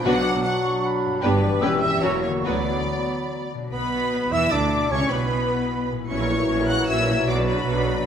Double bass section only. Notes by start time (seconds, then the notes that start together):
0.04 B1
1.22 G1
1.62 E1
2.03 E1
2.45 D2
3.72 B1
4.32 E2
4.52 D2
4.90 C#2
5.10 B1
6.09 A#1
6.48 A#1
6.87 A#1
7.26 B1
7.66 B1